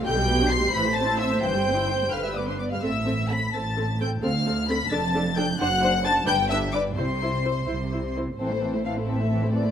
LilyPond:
<<
  \new Staff \with { instrumentName = "Violin section" } { \time 6/8 \key c \major \tempo 4. = 87 g'''4 c''''8 b'''8 a'''8 e'''8 | g'''4. f'''16 e'''16 d'''16 c'''16 d'''16 f'''16 | e'''4 b'''8 a'''4 g'''8 | f'''4 b'''8 a'''4 g'''8 |
fis'''4 a'''8 g'''8 e'''8 d'''8 | c'''2~ c'''8 r8 | \key a \minor c''4 f''8 e''4 d''8 | }
  \new Staff \with { instrumentName = "Violin section" } { \time 6/8 \key c \major g''4 c'''8 b''8 a''8 e''8 | g''4. f''16 e''16 d''16 c''16 d''16 f''16 | e''4 b''8 a''4 g''8 | f''4 b''8 a''4 g''8 |
fis''4 a''8 g''8 e''8 d''8 | c''2~ c''8 r8 | \key a \minor <c' a'>16 <e' c''>16 <c' a'>16 <e' c''>16 <c' a'>16 <e' c''>16 <c' a'>16 <e' c''>16 <c' a'>16 <e' c''>16 <c' a'>16 <e' c''>16 | }
  \new Staff \with { instrumentName = "Viola section" } { \time 6/8 \key c \major << { g'4. c''4.~ | c''4. b'4 r8 | a'8 a'8 a'8 a'8 a'8 a'8 | a'8 a'8 a'8 a'8 a'8 a'8 |
c''8 c''8 c''8 b'8 b'8 b'8 | c''8 c''8 c''8 c''8 c''8 c''8 | \key a \minor c'16 a16 c'16 a16 c'16 a16 c'16 a16 c'16 a16 c'16 a16 | } \\ { d16 g16 b16 d'16 b16 g16 e16 a16 c'16 e'16 c'16 a16 | e16 g16 c'16 e'16 c'16 g16 d16 g16 b16 d'16 b16 g16 | c'8 c'8 c'8 c'8 c'8 c'8 | c'8 c'8 c'8 d'8 d'8 d'8 |
d'8 d'8 d'8 d'8 d'8 d'8 | e'8 e'8 e'8 e'8 e'8 e'8 | e16 a16 e16 a16 e16 a16 e16 a16 e16 a16 e16 a16 | } >> }
  \new Staff \with { instrumentName = "Cello section" } { \clef bass \time 6/8 \key c \major b,4. a,4. | g,4. g,4. | a,4. a,4. | d,4. f,4. |
fis,4. g,4. | c4. c4. | \key a \minor a,2. | }
  \new Staff \with { instrumentName = "Double bass section" } { \clef bass \time 6/8 \key c \major b,,4. a,,4. | g,,4. g,,4. | a,,4. a,,4. | d,4. f,,4. |
fis,,4. g,,4. | c,4. c,4. | \key a \minor a,,2. | }
>>